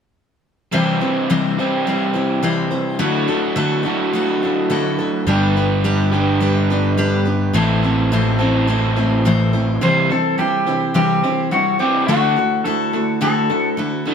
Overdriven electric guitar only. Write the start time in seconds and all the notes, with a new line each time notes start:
0.72 C3 E3 G3 E4 G4
1.58 C3 E3 G3 E4 G4
3.00 D3 F#3 A3 D4 F#4
3.85 D3 F#3 A3 D4 F#4
5.27 G2 D3 G3 B3 D4 G4
6.11 G2 D3 G3 B3 D4 G4
7.54 A2 E3 C4 E4 A4
8.39 A2 E3 C4 E4 A4
9.82 C3 E3 G3
10.10 C3 E3
10.39 C3 E3
10.67 C3 E3
10.96 C3 E3
11.24 C3 E3
11.52 C3 E3
11.81 C3 E3 G3
12.08 D3 A3 D4
12.37 D3 A3
12.65 D3 A3
12.94 D3 A3
13.21 D3 A3
13.50 D3 A3
13.79 D3 A3
14.07 D3 A3 D4